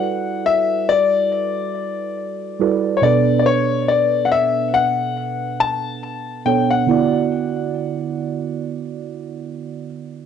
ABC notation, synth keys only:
X:1
M:4/4
L:1/8
Q:"Swing 16ths" 1/4=70
K:D
V:1 name="Synth keys"
[G,EFABd]6 [G,EFABd] [B,,B,DAB]- | [B,,B,DAB]6- [B,,B,DAB] [B,,B,DAc] | [D,B,EFd]8 |]